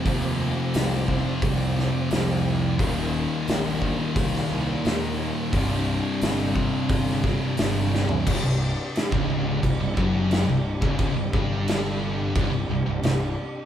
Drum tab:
CC |----------------|----------------|----------------|x---x---x---x---|
HH |o---o---o---o---|o---o---o---o---|o---o---o---o---|----------------|
SD |----o-----o-o---|----o----o--o---|----o----oo-o-o-|----o-------o---|
FT |----------------|----------------|---------------o|----------------|
BD |o-----o-o-------|o-----o-o-------|o-----o-o-o-----|o----o--o-o----o|

CC |x---x---x---x---|
HH |----------------|
SD |----o-------o---|
FT |----------------|
BD |o-o-----o-------|